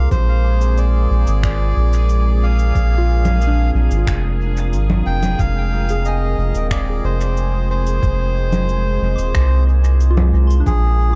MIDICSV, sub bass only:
0, 0, Header, 1, 2, 480
1, 0, Start_track
1, 0, Tempo, 659341
1, 84, Time_signature, 4, 2, 24, 8
1, 8119, End_track
2, 0, Start_track
2, 0, Title_t, "Sub bass"
2, 0, Program_c, 0, 38
2, 83, Note_on_c, 0, 34, 101
2, 781, Note_off_c, 0, 34, 0
2, 803, Note_on_c, 0, 34, 104
2, 910, Note_off_c, 0, 34, 0
2, 925, Note_on_c, 0, 32, 99
2, 1261, Note_off_c, 0, 32, 0
2, 1283, Note_on_c, 0, 34, 103
2, 1981, Note_off_c, 0, 34, 0
2, 2003, Note_on_c, 0, 34, 99
2, 2701, Note_off_c, 0, 34, 0
2, 2725, Note_on_c, 0, 34, 103
2, 2831, Note_off_c, 0, 34, 0
2, 2845, Note_on_c, 0, 32, 99
2, 2949, Note_off_c, 0, 32, 0
2, 2964, Note_on_c, 0, 29, 95
2, 3443, Note_on_c, 0, 32, 105
2, 3454, Note_off_c, 0, 29, 0
2, 3655, Note_off_c, 0, 32, 0
2, 3683, Note_on_c, 0, 29, 92
2, 3895, Note_off_c, 0, 29, 0
2, 3924, Note_on_c, 0, 29, 101
2, 4621, Note_off_c, 0, 29, 0
2, 4642, Note_on_c, 0, 29, 101
2, 4750, Note_off_c, 0, 29, 0
2, 4764, Note_on_c, 0, 27, 100
2, 5100, Note_off_c, 0, 27, 0
2, 5122, Note_on_c, 0, 29, 104
2, 5820, Note_off_c, 0, 29, 0
2, 5844, Note_on_c, 0, 29, 103
2, 6541, Note_off_c, 0, 29, 0
2, 6562, Note_on_c, 0, 29, 105
2, 6670, Note_off_c, 0, 29, 0
2, 6683, Note_on_c, 0, 27, 99
2, 6788, Note_off_c, 0, 27, 0
2, 6803, Note_on_c, 0, 36, 99
2, 7518, Note_off_c, 0, 36, 0
2, 7523, Note_on_c, 0, 36, 86
2, 7735, Note_off_c, 0, 36, 0
2, 7764, Note_on_c, 0, 34, 101
2, 8119, Note_off_c, 0, 34, 0
2, 8119, End_track
0, 0, End_of_file